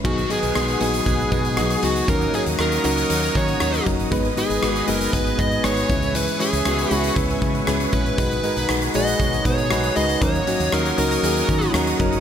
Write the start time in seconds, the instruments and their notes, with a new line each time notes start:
0.04 fretless electric bass B1, clean electric guitar D#3, synth keys F#3 B3 D#4 G#4, lead electric guitar F#4, string machine B4 F#5 G#5 D#6, kick, crash
0.18 closed hi-hat
0.29 synth keys F#3 B3 D#4 G#4, clean electric guitar D#4, lead electric guitar G#4, closed hi-hat
0.43 fretless electric bass B1, closed hi-hat
0.54 fretless electric bass B1, synth keys F#3 B3 D#4 G#4, clean electric guitar G#3, cross-stick, closed hi-hat
0.68 closed hi-hat
0.80 fretless electric bass A#1, synth keys F#3 B3 D#4 G#4, clean electric guitar F#4, lead electric guitar G#4, closed hi-hat
0.94 closed hi-hat
1.06 fretless electric bass B1, synth keys F#3 B3 D#4 G#4, clean electric guitar G#3, kick, closed hi-hat
1.20 closed hi-hat
1.31 fretless electric bass B2, synth keys F#3 B3 D#4 G#4, clean electric guitar D#4, kick, closed hi-hat
1.45 closed hi-hat
1.57 fretless electric bass B1, synth keys F#3 B3 D#4 G#4, clean electric guitar F#4, cross-stick, closed hi-hat
1.70 closed hi-hat
1.82 fretless electric bass C#2, synth keys F#3 B3 D#4 G#4, clean electric guitar D#4, lead electric guitar F#4, closed hi-hat
1.96 closed hi-hat
2.07 fretless electric bass D#2, synth keys F#3 C#4 D#4 A#4, clean electric guitar A#3, lead electric guitar A#4, string machine C#5 F#5 A#5, kick, closed hi-hat
2.21 closed hi-hat
2.33 synth keys F#3 C#4 D#4 A#4, clean electric guitar C#4, lead electric guitar G#4, closed hi-hat
2.46 fretless electric bass D#2, closed hi-hat
2.58 fretless electric bass D#2, synth keys F#3 C#4 D#4 A#4, clean electric guitar A#3, lead electric guitar A#4, cross-stick, closed hi-hat
2.72 closed hi-hat
2.83 fretless electric bass C#2, synth keys F#3 C#4 D#4 A#4, clean electric guitar F#4, lead electric guitar A#4, closed hi-hat
2.97 closed hi-hat
3.09 fretless electric bass D#2, synth keys F#3 C#4 D#4 A#4, clean electric guitar A#3, closed hi-hat
3.23 closed hi-hat
3.35 fretless electric bass D#3, synth keys F#3 C#4 D#4 A#4, clean electric guitar C#4, lead electric guitar C#5, kick, closed hi-hat
3.48 closed hi-hat
3.60 fretless electric bass D#2, synth keys F#3 C#4 D#4 A#4, clean electric guitar F#4, cross-stick, closed hi-hat
3.74 closed hi-hat
3.85 fretless electric bass F#1, synth keys F#3 C#4 D#4 A#4, clean electric guitar C#4, kick, closed hi-hat
4.00 closed hi-hat
4.11 fretless electric bass G#1, clean electric guitar D#3, synth keys G#3 B3 D#4 B4, string machine B4 D#5 G#5, kick, closed hi-hat
4.25 closed hi-hat
4.36 synth keys G#3 B3 D#4 B4, clean electric guitar D#4, lead electric guitar G#4, closed hi-hat
4.50 fretless electric bass G#1, closed hi-hat
4.62 fretless electric bass G#1, synth keys G#3 B3 D#4 F#4, clean electric guitar B3, cross-stick, closed hi-hat
4.76 closed hi-hat
4.87 fretless electric bass F#1, synth keys G#3 B3 D#4 B4, clean electric guitar G#4, lead electric guitar A#4, closed hi-hat
5.01 closed hi-hat
5.13 fretless electric bass G#1, synth keys G#3 B3 D#4 B4, clean electric guitar B3, lead electric guitar B4, kick, closed hi-hat
5.27 closed hi-hat
5.38 fretless electric bass G#2, synth keys G#3 B3 D#4 B4, clean electric guitar D#4, lead electric guitar D#5, kick, closed hi-hat
5.51 closed hi-hat
5.63 fretless electric bass G#1, synth keys G#3 B3 D#4 B4, clean electric guitar G#4, lead electric guitar C#5, cross-stick, closed hi-hat
5.77 closed hi-hat
5.89 fretless electric bass C#2, clean electric guitar E3, synth keys G#3 C#4 E4 B4, string machine B4 E5 C#6, kick, closed hi-hat
6.02 closed hi-hat
6.14 clean electric guitar E3, lead electric guitar B4, closed hi-hat
6.28 closed hi-hat
6.39 synth keys G#3 C#4 E4 B4, clean electric guitar C#4, lead electric guitar G#4, closed hi-hat
6.53 fretless electric bass C#2, closed hi-hat
6.65 fretless electric bass C#2, synth keys G#3 C#4 E4 F#4, clean electric guitar B3, cross-stick, closed hi-hat
6.78 closed hi-hat
6.90 fretless electric bass C#2, synth keys G#3 C#4 E4 B4, lead electric guitar F#4, clean electric guitar G#4, closed hi-hat
7.04 closed hi-hat
7.16 fretless electric bass C#2, synth keys G#3 C#4 E4 B4, clean electric guitar B3, kick, closed hi-hat
7.30 closed hi-hat
7.41 fretless electric bass C#3, synth keys G#3 C#4 E4 B4, clean electric guitar C#4, kick, closed hi-hat
7.55 closed hi-hat
7.67 fretless electric bass C#2, synth keys G#3 C#4 E4 B4, clean electric guitar G#4, cross-stick, closed hi-hat
7.80 closed hi-hat
7.92 fretless electric bass A#1, synth keys G#3 C#4 E4 B4, clean electric guitar C#4, lead electric guitar B4, kick, closed hi-hat
8.06 closed hi-hat
8.18 fretless electric bass B1, clean electric guitar D#3, synth keys G#3 D#4 F#4 B4, lead electric guitar B4, string machine F#5 D#6, kick, closed hi-hat
8.31 closed hi-hat
8.43 synth keys G#3 D#4 F#4 A#4, clean electric guitar D#4, closed hi-hat
8.57 fretless electric bass B1, closed hi-hat
8.69 fretless electric bass B1, clean electric guitar G#3, synth keys G#3 D#4 F#4 B4, cross-stick, closed hi-hat
8.82 closed hi-hat
8.94 fretless electric bass A#1, synth keys G#3 D#4 F#4 G#4, clean electric guitar F#4, lead electric guitar D#5, closed hi-hat
9.07 closed hi-hat
9.19 fretless electric bass B1, clean electric guitar G#3, synth keys G#3 D#4 F#4 C#5, kick, closed hi-hat
9.33 closed hi-hat
9.45 fretless electric bass B2, synth keys G#3 D#4 F#4 B4, clean electric guitar D#4, lead electric guitar C#5, kick, closed hi-hat
9.58 closed hi-hat
9.71 fretless electric bass B1, synth keys G#3 D#4 F#4 B4, clean electric guitar F#4, cross-stick, closed hi-hat
9.83 closed hi-hat
9.96 fretless electric bass C#2, synth keys G#3 D#4 F#4 B4, clean electric guitar D#4, lead electric guitar D#5, closed hi-hat
10.09 closed hi-hat
10.21 fretless electric bass D#2, synth keys F#3 C#4 D#4 A#4, clean electric guitar A#3, string machine C#5 F#5 A#5, lead electric guitar C#5, kick, closed hi-hat
10.35 closed hi-hat
10.47 synth keys F#3 C#4 D#4 F#4, clean electric guitar C#4, closed hi-hat
10.60 fretless electric bass D#2, closed hi-hat
10.72 fretless electric bass D#2, synth keys F#3 C#4 D#4 A#4, clean electric guitar A#3, lead electric guitar A#4, cross-stick, closed hi-hat
10.85 closed hi-hat
10.97 fretless electric bass C#2, synth keys F#3 C#4 D#4 A#4, clean electric guitar F#4, lead electric guitar A#4, closed hi-hat
11.11 closed hi-hat
11.23 fretless electric bass D#2, synth keys F#3 C#4 D#4 G#4, clean electric guitar A#3, closed hi-hat
11.37 closed hi-hat
11.48 fretless electric bass D#3, synth keys F#3 C#4 D#4 A#4, clean electric guitar C#4, kick, closed hi-hat
11.62 closed hi-hat
11.74 fretless electric bass D#2, synth keys F#3 C#4 D#4 A#4, clean electric guitar F#4, cross-stick, closed hi-hat
11.87 closed hi-hat
11.99 fretless electric bass F#1, synth keys F#3 C#4 D#4 A#4, clean electric guitar C#4, kick, closed hi-hat
12.12 closed hi-hat